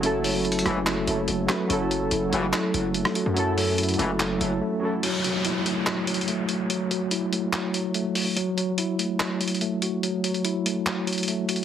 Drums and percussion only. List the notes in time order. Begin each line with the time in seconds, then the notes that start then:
0.03 closed hi-hat
0.24 open hi-hat
0.45 closed hi-hat
0.52 closed hi-hat
0.59 closed hi-hat
0.66 cross-stick, closed hi-hat
0.86 clap, closed hi-hat
1.07 closed hi-hat
1.28 closed hi-hat
1.49 cross-stick, clap, closed hi-hat
1.70 closed hi-hat
1.91 closed hi-hat
2.11 closed hi-hat
2.33 closed hi-hat
2.53 clap, closed hi-hat
2.74 closed hi-hat
2.94 closed hi-hat
3.05 cross-stick
3.15 closed hi-hat
3.37 closed hi-hat
3.58 open hi-hat
3.78 closed hi-hat
3.83 closed hi-hat
3.89 closed hi-hat
3.94 closed hi-hat
3.99 closed hi-hat
4.20 clap, closed hi-hat
4.41 closed hi-hat
5.03 closed hi-hat, crash
5.24 closed hi-hat
5.45 closed hi-hat
5.66 closed hi-hat
5.86 clap, closed hi-hat
6.07 closed hi-hat
6.14 closed hi-hat
6.21 closed hi-hat
6.28 closed hi-hat
6.49 closed hi-hat
6.70 closed hi-hat
6.91 closed hi-hat
7.11 closed hi-hat
7.33 closed hi-hat
7.53 clap, closed hi-hat
7.74 closed hi-hat
7.94 closed hi-hat
8.15 open hi-hat
8.37 closed hi-hat
8.58 closed hi-hat
8.78 closed hi-hat
8.99 closed hi-hat
9.20 clap, closed hi-hat
9.41 closed hi-hat
9.48 closed hi-hat
9.55 closed hi-hat
9.61 closed hi-hat
9.82 closed hi-hat
10.03 closed hi-hat
10.24 closed hi-hat
10.34 closed hi-hat
10.45 closed hi-hat
10.66 closed hi-hat
10.86 clap, closed hi-hat
11.07 closed hi-hat
11.13 closed hi-hat
11.18 closed hi-hat
11.23 closed hi-hat
11.28 closed hi-hat
11.49 closed hi-hat, open hi-hat
11.56 closed hi-hat